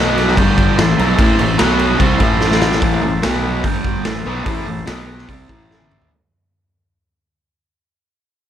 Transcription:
0.00 0.35 B1 loud
0.00 0.37 B2 medium
0.00 0.37 F#3 loud
0.00 0.36 B3 loud
0.00 0.37 F#4 medium
0.00 0.37 B4 medium
0.00 0.37 F#5 medium
0.18 snare soft
0.18 ride medium
0.28 snare soft
0.36 0.75 G1 medium
0.36 0.77 G2 loud
0.36 0.77 D3 loud
0.36 0.77 G3 loud
0.36 0.78 G4 medium
0.36 0.79 D5 medium
0.36 0.79 G5 loud
0.36 kick medium
0.36 ride loud
0.58 kick medium
0.58 ride medium
0.75 0.97 A1 medium
0.75 0.94 A2 medium
0.75 0.94 E3 medium
0.75 1.57 A4 medium
0.75 1.57 C5 medium
0.75 1.58 E5 medium
0.75 snare loud
0.75 ride loud
0.98 1.18 B1 loud
0.98 1.18 B2 loud
0.98 1.18 F#3 loud
0.98 1.18 B3 loud
0.98 ride medium
1.18 1.38 A1 loud
1.18 1.38 A2 loud
1.18 1.38 E3 loud
1.18 1.39 A3 loud
1.18 kick loud
1.18 ride loud
1.39 1.59 A1 medium
1.39 1.55 A2 medium
1.39 1.55 E3 medium
1.39 ride medium
1.57 1.98 B1 loud
1.57 1.98 B2 loud
1.57 1.99 F#3 loud
1.57 1.99 B3 loud
1.57 2.00 F#4 medium
1.57 2.00 B4 medium
1.57 2.00 F#5 medium
1.57 snare loud
1.57 ride loud
1.79 ride medium
1.99 2.19 C2 loud
1.99 2.19 C3 loud
1.99 2.20 G3 loud
1.99 2.20 C4 loud
1.99 2.80 A4 medium
1.99 2.80 C5 medium
1.99 2.81 E5 loud
1.99 kick loud
1.99 ride loud
2.19 2.78 A1 medium
2.19 2.80 A2 medium
2.19 2.80 E3 medium
2.19 2.81 A3 loud
2.19 kick medium
2.19 ride medium
2.41 snare medium
2.52 snare medium
2.62 snare loud
2.72 snare medium
2.81 3.01 A1 medium
2.81 3.01 A2 loud
2.81 3.01 E3 loud
2.81 3.02 A3 medium
2.81 3.23 A4 medium
2.81 3.23 C5 medium
2.81 3.23 E5 medium
2.81 kick loud
2.81 open hi-hat medium
3.03 3.22 A1 medium
3.03 3.19 A2 medium
3.03 3.19 E3 medium
3.22 3.62 B1 medium
3.22 3.63 B2 medium
3.22 3.63 F#3 loud
3.22 3.64 B3 loud
3.22 3.65 F#4 medium
3.22 3.64 B4 medium
3.22 3.65 F#5 medium
3.22 snare loud
3.22 open hi-hat medium
3.64 4.02 G1 medium
3.64 4.05 G2 medium
3.64 4.05 D3 medium
3.64 4.05 G3 loud
3.64 4.05 G4 medium
3.64 4.06 D5 medium
3.64 4.06 G5 medium
3.64 kick medium
3.64 open hi-hat medium
3.85 kick medium
4.04 4.25 A1 medium
4.04 4.22 A2 medium
4.04 4.22 E3 medium
4.04 4.86 A4 medium
4.04 4.85 C5 medium
4.04 4.86 E5 medium
4.04 snare loud
4.04 open hi-hat medium
4.25 4.45 B1 medium
4.25 4.44 B2 medium
4.25 4.45 F#3 medium
4.25 4.45 B3 loud
4.45 4.65 A1 medium
4.45 4.65 A2 medium
4.45 4.65 E3 loud
4.45 4.66 A3 loud
4.45 kick loud
4.45 open hi-hat medium
4.66 4.87 A1 medium
4.66 4.83 A2 medium
4.66 4.83 E3 medium
4.86 5.26 B1 loud
4.86 5.27 B2 medium
4.86 5.28 F#3 medium
4.86 5.28 B3 loud
4.86 5.28 F#4 medium
4.86 5.29 B4 medium
4.86 5.28 F#5 medium
4.86 snare loud
4.86 open hi-hat medium
5.19 snare soft
5.29 5.48 C2 medium
5.29 5.48 C3 medium
5.29 5.49 G3 loud
5.29 5.49 C4 loud
5.29 6.10 A4 medium
5.29 6.11 C5 medium
5.29 6.11 E5 medium
5.29 kick medium
5.29 open hi-hat medium
5.48 6.07 A1 medium
5.48 6.10 A2 loud
5.48 6.10 E3 medium
5.48 6.11 A3 loud
5.48 kick medium
5.71 snare medium
5.81 high tom medium
5.91 mid tom medium
6.02 floor tom medium

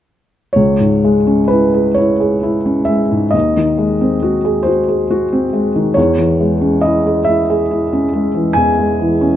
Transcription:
0.53 3.30 C#2 soft
0.53 1.48 C#5 soft
0.80 1.17 G#2 soft
1.04 1.41 G#3 soft
1.27 1.64 C#4 soft
1.48 1.88 E4 soft
1.48 1.96 B4 medium
1.74 2.11 G#4 soft
1.95 2.34 E4 soft
1.95 2.88 C#5 medium
2.20 2.57 G#4 soft
2.43 2.79 E4 soft
2.66 3.02 C#4 soft
2.85 3.25 G#3 soft
2.85 3.32 E5 soft
3.11 3.34 G#2 soft
3.31 5.93 D#2 soft
3.31 4.66 D#5 medium
3.57 3.93 D#3 soft
3.78 4.14 G#3 soft
4.01 4.37 C4 soft
4.22 4.59 F#4 soft
4.45 4.80 G#4 soft
4.63 5.02 F#4 soft
4.63 5.94 C5 soft
4.89 5.24 G#4 soft
5.11 5.45 F#4 soft
5.33 5.67 C4 soft
5.53 5.88 G#3 soft
5.76 5.97 D#3 soft
5.94 8.52 E2 soft
5.94 6.82 C#5 medium
6.18 6.53 E3 soft
6.40 6.75 G#3 soft
6.61 6.97 C#4 soft
6.81 7.19 E4 soft
6.81 7.26 D#5 medium
7.06 7.41 G#4 soft
7.25 7.62 E4 soft
7.25 8.55 E5 medium
7.50 7.84 G#4 soft
7.71 8.05 E4 soft
7.93 8.27 C#4 soft
8.13 8.48 G#3 soft
8.35 8.69 E3 soft
8.53 9.36 E2 soft
8.53 9.36 G#5 medium
8.79 9.14 G#3 soft
9.01 9.36 E3 soft
9.21 9.36 C#4 soft

